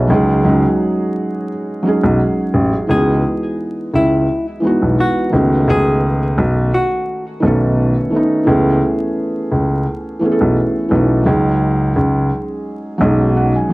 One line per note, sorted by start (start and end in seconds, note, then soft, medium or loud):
0.00 0.12 G#4 medium
0.00 0.11 B4 medium
0.00 0.28 C#5 medium
0.00 0.11 D#5 medium
0.00 0.12 E5 medium
0.00 0.12 G#5 medium
0.08 0.41 C#2 loud
0.08 0.35 F#3 medium
0.08 0.36 G#3 medium
0.08 0.37 C#4 medium
0.12 0.37 D#4 medium
0.12 0.38 G#4 loud
0.43 0.62 C#2 loud
0.43 1.46 F#3 medium
0.43 1.47 G#3 medium
0.43 1.48 C#4 medium
0.47 1.49 D#4 medium
0.47 1.49 F#4 medium
1.83 2.61 F#3 medium
1.83 2.62 G#3 medium
1.83 2.62 C#4 medium
1.87 2.63 D#4 medium
1.87 2.64 G#4 loud
2.03 2.18 B1 loud
2.54 2.71 A1 medium
2.87 3.21 C#2 loud
2.87 3.91 E3 medium
2.87 3.91 G#3 medium
2.87 3.92 B3 medium
2.87 3.90 G#4 medium
2.92 3.93 D#4 medium
2.92 3.94 F#4 medium
3.94 4.25 C#2 medium
3.94 4.45 E4 medium
4.60 5.15 E3 medium
4.60 5.15 G#3 medium
4.60 5.16 B3 medium
4.65 5.17 D#4 medium
4.65 5.18 F#4 medium
4.82 4.96 B1 medium
5.00 5.31 F#4 medium
5.30 5.64 C#2 medium
5.30 6.44 D#3 medium
5.30 6.45 A3 medium
5.30 6.45 B3 medium
5.35 6.46 C#4 medium
5.35 6.47 F#4 medium
5.68 6.38 C#2 loud
5.68 6.70 G#4 loud
6.38 6.69 B1 loud
6.74 7.24 F#4 medium
7.40 7.93 B1 medium
7.40 7.94 D#3 medium
7.40 7.95 A3 medium
7.40 7.96 B3 medium
7.44 7.96 C#4 medium
7.44 7.97 A4 medium
8.10 8.38 D#3 medium
8.10 8.39 A3 medium
8.10 8.39 B3 medium
8.15 8.40 C#4 medium
8.15 8.41 D#4 medium
8.44 8.79 C#2 loud
8.44 9.48 E3 medium
8.44 9.49 A3 medium
8.44 9.50 B3 medium
8.50 9.51 C#4 medium
8.50 9.51 G#4 medium
9.52 9.83 C#2 medium
10.19 10.73 E3 medium
10.19 10.74 A3 medium
10.19 10.75 B3 medium
10.24 10.76 C#4 medium
10.24 10.30 G#4 medium
10.32 10.79 A4 medium
10.41 10.55 B1 medium
10.89 11.23 B1 medium
10.89 11.16 E3 medium
10.89 11.17 A3 medium
10.89 11.18 B3 medium
10.93 11.19 C#4 medium
10.93 11.20 D#4 medium
11.24 11.92 C#2 loud
11.24 12.27 F#3 medium
11.24 12.28 G#3 medium
11.24 12.29 C#4 medium
11.28 12.30 D#4 medium
11.28 12.30 G#4 medium
11.96 12.28 C#2 medium
12.98 13.51 B1 loud
12.98 13.52 F#3 medium
12.98 13.53 G#3 medium
12.98 13.53 C#4 medium
12.98 13.33 D#5 medium
13.02 13.54 D#4 medium
13.02 13.55 G#4 medium
13.37 13.54 F#5 medium
13.56 13.70 G#5 medium
13.69 13.73 F#3 medium